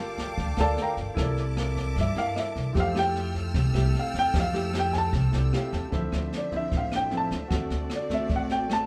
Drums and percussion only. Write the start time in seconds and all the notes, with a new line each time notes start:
0.18 kick, snare
0.38 kick, snare
0.57 cross-stick, snare
0.77 snare
0.97 kick, snare
1.17 kick, cross-stick, snare
1.37 snare
1.57 cross-stick, snare
1.76 kick, snare
1.96 kick, snare
2.17 snare
2.36 cross-stick, snare
2.56 kick, snare
2.75 kick, snare
2.96 cross-stick, snare
3.16 snare
3.35 kick, snare
3.54 kick, snare
3.74 cross-stick, snare
3.95 snare
4.14 kick, snare
4.34 kick, cross-stick, snare
4.54 snare
4.73 cross-stick, snare
4.93 kick, snare
5.13 kick, snare
5.33 snare
5.53 cross-stick, snare
5.73 kick, snare
5.92 kick, snare
6.12 cross-stick, snare
6.33 snare
6.52 kick, snare
6.72 kick, snare
6.92 cross-stick, snare
7.11 snare
7.31 kick, snare
7.51 kick, cross-stick, snare
7.70 snare
7.90 cross-stick, snare
8.10 kick, snare
8.29 kick, snare
8.50 snare
8.70 cross-stick, snare